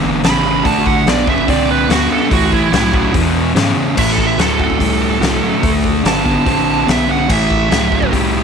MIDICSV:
0, 0, Header, 1, 5, 480
1, 0, Start_track
1, 0, Tempo, 415512
1, 751, Time_signature, 4, 2, 24, 8
1, 9743, End_track
2, 0, Start_track
2, 0, Title_t, "Lead electric guitar"
2, 0, Program_c, 0, 29
2, 293, Note_on_c, 0, 83, 104
2, 748, Note_off_c, 0, 83, 0
2, 765, Note_on_c, 0, 81, 87
2, 991, Note_off_c, 0, 81, 0
2, 1001, Note_on_c, 0, 78, 90
2, 1228, Note_off_c, 0, 78, 0
2, 1256, Note_on_c, 0, 74, 93
2, 1476, Note_off_c, 0, 74, 0
2, 1499, Note_on_c, 0, 76, 80
2, 1717, Note_off_c, 0, 76, 0
2, 1730, Note_on_c, 0, 74, 100
2, 1953, Note_off_c, 0, 74, 0
2, 1973, Note_on_c, 0, 71, 86
2, 2194, Note_off_c, 0, 71, 0
2, 2208, Note_on_c, 0, 66, 98
2, 2431, Note_off_c, 0, 66, 0
2, 2451, Note_on_c, 0, 69, 93
2, 2672, Note_off_c, 0, 69, 0
2, 2696, Note_on_c, 0, 66, 85
2, 2915, Note_off_c, 0, 66, 0
2, 2931, Note_on_c, 0, 64, 84
2, 3146, Note_off_c, 0, 64, 0
2, 3160, Note_on_c, 0, 64, 99
2, 3619, Note_off_c, 0, 64, 0
2, 4604, Note_on_c, 0, 76, 92
2, 4750, Note_off_c, 0, 76, 0
2, 4762, Note_on_c, 0, 69, 82
2, 4909, Note_off_c, 0, 69, 0
2, 4928, Note_on_c, 0, 76, 75
2, 5072, Note_off_c, 0, 76, 0
2, 5079, Note_on_c, 0, 69, 85
2, 5222, Note_off_c, 0, 69, 0
2, 5236, Note_on_c, 0, 69, 91
2, 6628, Note_off_c, 0, 69, 0
2, 7007, Note_on_c, 0, 81, 115
2, 7929, Note_off_c, 0, 81, 0
2, 7978, Note_on_c, 0, 76, 94
2, 8196, Note_off_c, 0, 76, 0
2, 8219, Note_on_c, 0, 78, 104
2, 8437, Note_off_c, 0, 78, 0
2, 8464, Note_on_c, 0, 76, 101
2, 9378, Note_off_c, 0, 76, 0
2, 9743, End_track
3, 0, Start_track
3, 0, Title_t, "Distorted electric guitar"
3, 0, Program_c, 1, 30
3, 0, Note_on_c, 1, 40, 92
3, 0, Note_on_c, 1, 50, 88
3, 221, Note_off_c, 1, 40, 0
3, 226, Note_off_c, 1, 50, 0
3, 272, Note_on_c, 1, 40, 80
3, 272, Note_on_c, 1, 49, 97
3, 487, Note_off_c, 1, 49, 0
3, 488, Note_off_c, 1, 40, 0
3, 516, Note_on_c, 1, 40, 77
3, 522, Note_on_c, 1, 49, 80
3, 729, Note_off_c, 1, 40, 0
3, 732, Note_off_c, 1, 49, 0
3, 743, Note_on_c, 1, 50, 83
3, 746, Note_on_c, 1, 57, 86
3, 1178, Note_off_c, 1, 50, 0
3, 1180, Note_off_c, 1, 57, 0
3, 1235, Note_on_c, 1, 50, 92
3, 1237, Note_on_c, 1, 59, 90
3, 1448, Note_off_c, 1, 50, 0
3, 1449, Note_off_c, 1, 59, 0
3, 1465, Note_on_c, 1, 50, 77
3, 1474, Note_on_c, 1, 59, 88
3, 1683, Note_off_c, 1, 50, 0
3, 1688, Note_off_c, 1, 59, 0
3, 1712, Note_on_c, 1, 50, 85
3, 1715, Note_on_c, 1, 60, 102
3, 2142, Note_off_c, 1, 50, 0
3, 2144, Note_off_c, 1, 60, 0
3, 2183, Note_on_c, 1, 50, 75
3, 2191, Note_on_c, 1, 59, 96
3, 2401, Note_off_c, 1, 50, 0
3, 2406, Note_off_c, 1, 59, 0
3, 2425, Note_on_c, 1, 50, 78
3, 2426, Note_on_c, 1, 59, 80
3, 2642, Note_off_c, 1, 50, 0
3, 2643, Note_off_c, 1, 59, 0
3, 2651, Note_on_c, 1, 45, 90
3, 2661, Note_on_c, 1, 52, 92
3, 3091, Note_off_c, 1, 45, 0
3, 3096, Note_off_c, 1, 52, 0
3, 3134, Note_on_c, 1, 45, 89
3, 3141, Note_on_c, 1, 54, 92
3, 3356, Note_off_c, 1, 45, 0
3, 3359, Note_off_c, 1, 54, 0
3, 3377, Note_on_c, 1, 45, 86
3, 3382, Note_on_c, 1, 54, 84
3, 3598, Note_off_c, 1, 45, 0
3, 3600, Note_off_c, 1, 54, 0
3, 3622, Note_on_c, 1, 40, 76
3, 3630, Note_on_c, 1, 47, 87
3, 4056, Note_off_c, 1, 40, 0
3, 4060, Note_off_c, 1, 47, 0
3, 4103, Note_on_c, 1, 40, 83
3, 4112, Note_on_c, 1, 49, 90
3, 4320, Note_off_c, 1, 40, 0
3, 4324, Note_off_c, 1, 49, 0
3, 4340, Note_on_c, 1, 40, 76
3, 4344, Note_on_c, 1, 49, 87
3, 4559, Note_off_c, 1, 40, 0
3, 4561, Note_off_c, 1, 49, 0
3, 4575, Note_on_c, 1, 45, 79
3, 4586, Note_on_c, 1, 52, 84
3, 5012, Note_off_c, 1, 45, 0
3, 5017, Note_off_c, 1, 52, 0
3, 5062, Note_on_c, 1, 45, 76
3, 5066, Note_on_c, 1, 54, 96
3, 5279, Note_off_c, 1, 45, 0
3, 5281, Note_off_c, 1, 54, 0
3, 5293, Note_on_c, 1, 45, 72
3, 5302, Note_on_c, 1, 54, 75
3, 5515, Note_off_c, 1, 45, 0
3, 5520, Note_off_c, 1, 54, 0
3, 5535, Note_on_c, 1, 45, 80
3, 5540, Note_on_c, 1, 55, 80
3, 5972, Note_off_c, 1, 45, 0
3, 5975, Note_off_c, 1, 55, 0
3, 6010, Note_on_c, 1, 45, 78
3, 6020, Note_on_c, 1, 54, 94
3, 6234, Note_off_c, 1, 45, 0
3, 6239, Note_off_c, 1, 54, 0
3, 6253, Note_on_c, 1, 45, 67
3, 6257, Note_on_c, 1, 54, 85
3, 6476, Note_off_c, 1, 45, 0
3, 6478, Note_off_c, 1, 54, 0
3, 6493, Note_on_c, 1, 50, 73
3, 6500, Note_on_c, 1, 57, 90
3, 6932, Note_off_c, 1, 50, 0
3, 6935, Note_off_c, 1, 57, 0
3, 6977, Note_on_c, 1, 50, 82
3, 6989, Note_on_c, 1, 59, 87
3, 7198, Note_off_c, 1, 50, 0
3, 7204, Note_off_c, 1, 59, 0
3, 7215, Note_on_c, 1, 50, 72
3, 7220, Note_on_c, 1, 59, 82
3, 7437, Note_off_c, 1, 50, 0
3, 7439, Note_off_c, 1, 59, 0
3, 7464, Note_on_c, 1, 50, 82
3, 7467, Note_on_c, 1, 60, 90
3, 7898, Note_off_c, 1, 50, 0
3, 7899, Note_off_c, 1, 60, 0
3, 7931, Note_on_c, 1, 50, 75
3, 7938, Note_on_c, 1, 59, 86
3, 8155, Note_off_c, 1, 50, 0
3, 8159, Note_off_c, 1, 59, 0
3, 8176, Note_on_c, 1, 50, 69
3, 8178, Note_on_c, 1, 59, 82
3, 8398, Note_off_c, 1, 50, 0
3, 8399, Note_off_c, 1, 59, 0
3, 8415, Note_on_c, 1, 45, 91
3, 8417, Note_on_c, 1, 52, 97
3, 8854, Note_off_c, 1, 45, 0
3, 8855, Note_off_c, 1, 52, 0
3, 8895, Note_on_c, 1, 45, 80
3, 8903, Note_on_c, 1, 54, 100
3, 9115, Note_off_c, 1, 54, 0
3, 9118, Note_off_c, 1, 45, 0
3, 9129, Note_on_c, 1, 45, 77
3, 9129, Note_on_c, 1, 54, 89
3, 9348, Note_off_c, 1, 45, 0
3, 9355, Note_off_c, 1, 54, 0
3, 9362, Note_on_c, 1, 45, 80
3, 9373, Note_on_c, 1, 55, 94
3, 9743, Note_off_c, 1, 45, 0
3, 9743, Note_off_c, 1, 55, 0
3, 9743, End_track
4, 0, Start_track
4, 0, Title_t, "FM bass"
4, 0, Program_c, 2, 39
4, 0, Note_on_c, 2, 31, 86
4, 254, Note_off_c, 2, 31, 0
4, 260, Note_on_c, 2, 32, 104
4, 731, Note_off_c, 2, 32, 0
4, 756, Note_on_c, 2, 33, 86
4, 1219, Note_off_c, 2, 33, 0
4, 1228, Note_on_c, 2, 35, 101
4, 1694, Note_off_c, 2, 35, 0
4, 1712, Note_on_c, 2, 36, 94
4, 2176, Note_off_c, 2, 36, 0
4, 2184, Note_on_c, 2, 38, 97
4, 2409, Note_off_c, 2, 38, 0
4, 2674, Note_on_c, 2, 37, 93
4, 2894, Note_off_c, 2, 37, 0
4, 3144, Note_on_c, 2, 36, 91
4, 3610, Note_off_c, 2, 36, 0
4, 3630, Note_on_c, 2, 40, 91
4, 4093, Note_off_c, 2, 40, 0
4, 4101, Note_on_c, 2, 44, 92
4, 4326, Note_off_c, 2, 44, 0
4, 4338, Note_on_c, 2, 44, 39
4, 4460, Note_off_c, 2, 44, 0
4, 4586, Note_on_c, 2, 45, 85
4, 5051, Note_off_c, 2, 45, 0
4, 5057, Note_on_c, 2, 38, 89
4, 5527, Note_off_c, 2, 38, 0
4, 5547, Note_on_c, 2, 37, 89
4, 6009, Note_off_c, 2, 37, 0
4, 6016, Note_on_c, 2, 36, 94
4, 6244, Note_off_c, 2, 36, 0
4, 6507, Note_on_c, 2, 38, 88
4, 6966, Note_off_c, 2, 38, 0
4, 6973, Note_on_c, 2, 31, 91
4, 7445, Note_off_c, 2, 31, 0
4, 7470, Note_on_c, 2, 33, 89
4, 7935, Note_off_c, 2, 33, 0
4, 7941, Note_on_c, 2, 35, 94
4, 8410, Note_off_c, 2, 35, 0
4, 8429, Note_on_c, 2, 33, 89
4, 8894, Note_off_c, 2, 33, 0
4, 8901, Note_on_c, 2, 37, 98
4, 9371, Note_off_c, 2, 37, 0
4, 9390, Note_on_c, 2, 36, 89
4, 9743, Note_off_c, 2, 36, 0
4, 9743, End_track
5, 0, Start_track
5, 0, Title_t, "Drums"
5, 272, Note_on_c, 9, 46, 56
5, 285, Note_on_c, 9, 38, 110
5, 388, Note_off_c, 9, 46, 0
5, 401, Note_off_c, 9, 38, 0
5, 753, Note_on_c, 9, 36, 108
5, 756, Note_on_c, 9, 46, 58
5, 868, Note_off_c, 9, 36, 0
5, 872, Note_off_c, 9, 46, 0
5, 994, Note_on_c, 9, 36, 90
5, 1110, Note_off_c, 9, 36, 0
5, 1233, Note_on_c, 9, 46, 55
5, 1246, Note_on_c, 9, 38, 110
5, 1349, Note_off_c, 9, 46, 0
5, 1362, Note_off_c, 9, 38, 0
5, 1472, Note_on_c, 9, 36, 94
5, 1588, Note_off_c, 9, 36, 0
5, 1593, Note_on_c, 9, 36, 82
5, 1708, Note_off_c, 9, 36, 0
5, 1713, Note_on_c, 9, 36, 107
5, 1720, Note_on_c, 9, 46, 63
5, 1829, Note_off_c, 9, 36, 0
5, 1836, Note_off_c, 9, 46, 0
5, 2194, Note_on_c, 9, 46, 64
5, 2207, Note_on_c, 9, 38, 108
5, 2309, Note_off_c, 9, 46, 0
5, 2322, Note_off_c, 9, 38, 0
5, 2672, Note_on_c, 9, 36, 113
5, 2675, Note_on_c, 9, 46, 66
5, 2787, Note_off_c, 9, 36, 0
5, 2791, Note_off_c, 9, 46, 0
5, 2913, Note_on_c, 9, 36, 86
5, 3029, Note_off_c, 9, 36, 0
5, 3151, Note_on_c, 9, 46, 59
5, 3164, Note_on_c, 9, 38, 115
5, 3267, Note_off_c, 9, 46, 0
5, 3280, Note_off_c, 9, 38, 0
5, 3392, Note_on_c, 9, 36, 90
5, 3507, Note_off_c, 9, 36, 0
5, 3631, Note_on_c, 9, 36, 110
5, 3631, Note_on_c, 9, 46, 62
5, 3746, Note_off_c, 9, 36, 0
5, 3746, Note_off_c, 9, 46, 0
5, 4110, Note_on_c, 9, 46, 55
5, 4123, Note_on_c, 9, 38, 118
5, 4226, Note_off_c, 9, 46, 0
5, 4238, Note_off_c, 9, 38, 0
5, 4590, Note_on_c, 9, 36, 110
5, 4592, Note_on_c, 9, 49, 121
5, 4706, Note_off_c, 9, 36, 0
5, 4707, Note_off_c, 9, 49, 0
5, 4829, Note_on_c, 9, 36, 88
5, 4944, Note_off_c, 9, 36, 0
5, 5067, Note_on_c, 9, 46, 58
5, 5080, Note_on_c, 9, 38, 104
5, 5183, Note_off_c, 9, 46, 0
5, 5195, Note_off_c, 9, 38, 0
5, 5308, Note_on_c, 9, 36, 86
5, 5424, Note_off_c, 9, 36, 0
5, 5428, Note_on_c, 9, 36, 77
5, 5543, Note_off_c, 9, 36, 0
5, 5548, Note_on_c, 9, 36, 90
5, 5552, Note_on_c, 9, 46, 65
5, 5664, Note_off_c, 9, 36, 0
5, 5668, Note_off_c, 9, 46, 0
5, 6032, Note_on_c, 9, 46, 62
5, 6045, Note_on_c, 9, 38, 106
5, 6148, Note_off_c, 9, 46, 0
5, 6160, Note_off_c, 9, 38, 0
5, 6505, Note_on_c, 9, 46, 65
5, 6507, Note_on_c, 9, 36, 106
5, 6620, Note_off_c, 9, 46, 0
5, 6622, Note_off_c, 9, 36, 0
5, 6747, Note_on_c, 9, 36, 84
5, 6862, Note_off_c, 9, 36, 0
5, 6988, Note_on_c, 9, 46, 59
5, 7001, Note_on_c, 9, 38, 111
5, 7104, Note_off_c, 9, 46, 0
5, 7116, Note_off_c, 9, 38, 0
5, 7226, Note_on_c, 9, 36, 80
5, 7342, Note_off_c, 9, 36, 0
5, 7466, Note_on_c, 9, 46, 58
5, 7467, Note_on_c, 9, 36, 114
5, 7582, Note_off_c, 9, 46, 0
5, 7583, Note_off_c, 9, 36, 0
5, 7950, Note_on_c, 9, 46, 53
5, 7962, Note_on_c, 9, 38, 107
5, 8065, Note_off_c, 9, 46, 0
5, 8078, Note_off_c, 9, 38, 0
5, 8428, Note_on_c, 9, 36, 107
5, 8430, Note_on_c, 9, 57, 93
5, 8544, Note_off_c, 9, 36, 0
5, 8545, Note_off_c, 9, 57, 0
5, 8669, Note_on_c, 9, 36, 88
5, 8784, Note_off_c, 9, 36, 0
5, 8909, Note_on_c, 9, 46, 56
5, 8922, Note_on_c, 9, 38, 113
5, 9025, Note_off_c, 9, 46, 0
5, 9037, Note_off_c, 9, 38, 0
5, 9149, Note_on_c, 9, 36, 88
5, 9265, Note_off_c, 9, 36, 0
5, 9270, Note_on_c, 9, 36, 82
5, 9385, Note_off_c, 9, 36, 0
5, 9391, Note_on_c, 9, 36, 96
5, 9392, Note_on_c, 9, 46, 62
5, 9506, Note_off_c, 9, 36, 0
5, 9508, Note_off_c, 9, 46, 0
5, 9743, End_track
0, 0, End_of_file